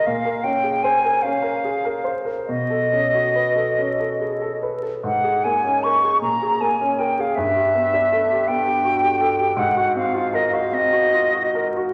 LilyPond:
<<
  \new Staff \with { instrumentName = "Flute" } { \time 6/8 \key bes \dorian \tempo 4. = 51 f''8 g''8 aes''8 f''4~ f''16 r16 | ees''2~ ees''8 r8 | ges''8 aes''8 des'''8 bes''8 aes''8 g''16 f''16 | e''4. g''4. |
ges''8 f''8 ees''16 f''16 ees''4~ ees''16 r16 | }
  \new Staff \with { instrumentName = "Grand piano" } { \time 6/8 \key bes \dorian bes,16 bes'16 des'16 aes'16 c''16 bes'16 des'16 bes'16 aes'16 bes'16 c''16 bes'16 | ces16 a'16 des'16 ges'16 ces''16 a'16 des'16 a'16 aes'16 a'16 ces''16 a'16 | aes,16 aes'16 bes16 des'16 bes'16 aes'16 bes,16 aes'16 bes16 des'16 bes'16 aes'16 | g,16 g'16 b16 d'16 a'16 g'16 b16 g'16 ges'16 g'16 a'16 g'16 |
aes,16 ges'16 c'16 f'16 bes'16 ges'16 c'16 ges'16 f'16 ges'16 bes'16 ges'16 | }
>>